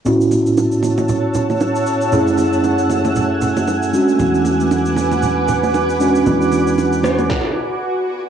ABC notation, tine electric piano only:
X:1
M:4/4
L:1/8
Q:"Swing 16ths" 1/4=116
K:Emix
V:1 name="Tine electric piano"
[A,,B,CEF]8 | [F,,A,CEG]6- [F,,A,CEG] [G,CDF]- | [G,CDF]6- [G,CDF] [G,CDF]- | [G,CDF]4 z4 |]